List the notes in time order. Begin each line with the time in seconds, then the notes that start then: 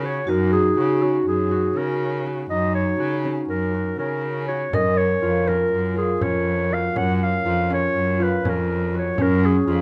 Already playing: C#3 C#4 D#4
0.03 F#4 C#5
0.27 F#2 D#4 F#4 A#4
0.53 G#4
0.77 C#3 F#4
1.02 C#4 F#4
1.27 F#2 G#4
1.51 F#4
1.76 C#3 C#4 A#4
2.26 F#4
2.50 F#2 D#4 D#5
2.75 C#5
3.00 C#3 F#4
3.25 C#4
3.49 F#2 A#4
3.74 F#4
3.99 C#3 C#4 A#4
4.48 F#4 C#5
4.73 F#2 C#4 A#4 D#5, frame drum
4.98 C#5
5.22 F2 F4
5.48 C#4 A#4, frame drum
5.72 F#2
5.97 F4 G#4
6.21 F2 C#4 C#5, frame drum
6.71 F#4 F5
6.95 F#2 C#4 F#5, frame drum
7.16 F#5
7.23 F5
7.46 F2 F4
7.70 C#4 C#5, frame drum
7.94 F#2
8.20 F4 B4
8.44 F2 C#4, frame drum
8.49 A#4
8.94 F#4 C#5
9.18 F#2 C#4, frame drum
9.22 A#4
9.46 G#4
9.67 F2 F4